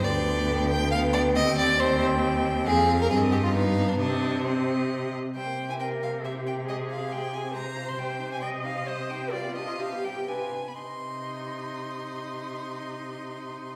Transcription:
<<
  \new Staff \with { instrumentName = "Violin" } { \time 3/4 \key c \minor \tempo 4 = 135 g''2 g''4 | g''4 g''2 | f''4 ees''4 f''4 | ees''4 ees''4. r8 |
g''8. aes''16 g''8 f''8 e''8 g''8 | ees''8 f''8 g''8 aes''8 bes''8. c'''16 | g''8. aes''16 g''8 f''8 ees''8 g''8 | d''8 ees''8 f''8 g''8 aes''8. b''16 |
c'''2.~ | c'''2. | }
  \new Staff \with { instrumentName = "Viola" } { \time 3/4 \key c \minor b2 b4 | c'4 c'2 | c'4 c'4 b4 | c'4 c'4. r8 |
c''4 bes'4 g'4 | aes'2 c''4~ | c''4 ees''4 c''4 | f'4 g'4 b'8 r8 |
ees'2.~ | ees'2. | }
  \new Staff \with { instrumentName = "Violin" } { \time 3/4 \key c \minor d''4. g''8 f''8 d''8 | ees''8 d''8 c''8 r4. | aes'8. bes'16 aes'8 g'16 f'16 ees'8. d'16 | d'4 c'4. r8 |
g16 bes16 c'16 e'16 c'16 bes16 g16 bes16 c'16 e'16 c'16 bes16 | aes16 c'16 f'16 c'16 aes16 c'16 f'16 c'16 aes16 c'16 f'16 c'16 | g16 c'16 ees'16 c'16 g16 c'16 ees'16 c'16 g16 c'16 ees'16 c'16 | g16 b16 d'16 f'16 d'16 b16 g16 b16 d'16 f'16 d'16 b16 |
ees''2.~ | ees''2. | }
  \new Staff \with { instrumentName = "Cello" } { \clef bass \time 3/4 \key c \minor d,2. | ees,2. | f,4 g,2 | c2~ c8 r8 |
c2.~ | c2. | c2.~ | c2~ c8 r8 |
c2.~ | c2. | }
>>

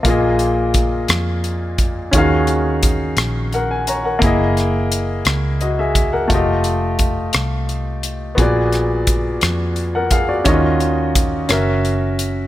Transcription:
<<
  \new Staff \with { instrumentName = "Grand piano" } { \time 6/8 \key ees \minor \tempo 4. = 58 << { r2. | r2 <bes' ges''>16 aes''16 <des'' bes''>16 <bes' ges''>16~ | <bes' ges''>16 r4. r16 <ges' ees''>16 <aes' fes''>8 <bes' ges''>16~ | <bes' ges''>16 r2 r8. |
r2 r16 <bes' ges''>16 <aes' f''>16 <ges' d''>16~ | <ges' d''>16 r2 r8. | } \\ { <bes f' aes' ees''>2. | <des' f' ges' aes' f''>2. | <bes fes' aes' ees''>2. | <a f' g' ees''>2. |
<ces' ges' aes' d''>2. | <des' f' ges' ees''>4. <des' ges' bes' fes''>4. | } >> }
  \new Staff \with { instrumentName = "Grand piano" } { \clef bass \time 6/8 \key ees \minor bes,4. r4. | ees4. r4. | r2. | r2. |
bes,4. r4. | ees4. r4. | }
  \new Staff \with { instrumentName = "Fingered electric bass" } { \clef bass \time 6/8 \key ees \minor bes,,4. f,4. | ees,4. bes,,4. | ges,,4. des,4. | f,,4. c,4. |
bes,,4. f,4. | ees,4. ges,,4. | }
  \new DrumStaff \with { instrumentName = "Drums" } \drummode { \time 6/8 <hh bd>8 hh8 <hh bd>8 <hh ss>8 hh8 <hh bd>8 | <hh bd>8 hh8 <hh bd>8 <hh ss>8 hh8 hh8 | <hh bd>8 <hh ss>8 hh8 <hh ss>8 hh8 <hh bd>8 | <hh bd>8 hh8 <hh bd>8 <hh ss>8 hh8 hh8 |
<hh bd>8 <hh ss>8 <hh bd>8 <hh ss>8 hh8 <hh bd>8 | <hh bd>8 hh8 <hh bd>8 <hh ss>8 hh8 hh8 | }
>>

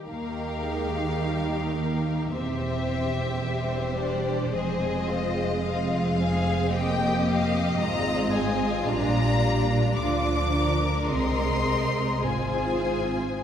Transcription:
<<
  \new Staff \with { instrumentName = "Violin section" } { \time 4/4 \key ees \major \tempo 4 = 54 f''2 e''4. d''8 | ees''4. f''8 g''8 f''8 bes''8 aes''8 | bes''4 d'''4 c'''4 aes''4 | }
  \new Staff \with { instrumentName = "Violin section" } { \time 4/4 \key ees \major << { bes'4 bes'4 c''4 c''4 | c''4 f''4 ees''2 | d''4 d''4 ees''4 c''4 | } \\ { g'2 g'2 | aes'8 f'8 f'8 aes'8 g'4 f'4~ | f'4 f'8 bes'4. aes'4 | } >> }
  \new Staff \with { instrumentName = "Viola section" } { \time 4/4 \key ees \major << { ees'2 c'4 c'8 d'8 | c'4 c'2 c'4 | d'8 d'4. c'4 f'4 | } \\ { bes8 aes8 g8 bes8 c'8 c'8 g4 | aes2 bes4 aes4 | g4 f4 aes4 c'8 c'8 | } >> }
  \new Staff \with { instrumentName = "Cello section" } { \clef bass \time 4/4 \key ees \major ees2 e,2 | f,2. aes,4 | bes,4 d4 c4 aes,4 | }
  \new Staff \with { instrumentName = "Double bass section" } { \clef bass \time 4/4 \key ees \major ees,2 e,,2 | f,,2. aes,,4 | bes,,4 d,4 c,4 aes,,4 | }
>>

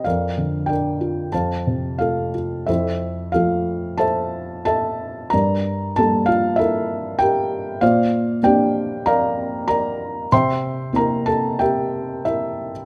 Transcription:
<<
  \new Staff \with { instrumentName = "Felt piano" } { \time 4/4 \key f \mixolydian \tempo 4 = 94 <bes' d'' f''>4 <bes' d'' g''>4 <c'' f'' a''>4 <f' a' f''>4 | \key f \major <e' a' c'' e''>4 <f' a' f''>4 <a' c'' e'' a''>4 <a' e'' a''>4 | <bes' d'' bes''>4 <a' a''>8 <f' f''>8 <e' a' bes' e''>4 <g' bes' g''>4 | <f' c'' d'' f''>4 <g' d'' g''>4 <bes' d'' f'' bes''>4 <bes' d'' bes''>4 |
<c'' e'' g'' c'''>4 <bes' bes''>8 <a' a''>8 <g' bes' e'' g''>4 <e' bes' e''>8. r16 | }
  \new Staff \with { instrumentName = "Felt piano" } { \time 4/4 \key f \mixolydian f,8 d8 d'8 f'8 f,8 c8 a8 f'8 | \key f \major f,4 <f a>2. | g,4 <g bes>2. | bes,4 <bes c' d'>2. |
c4 <bes c' e'>2. | }
>>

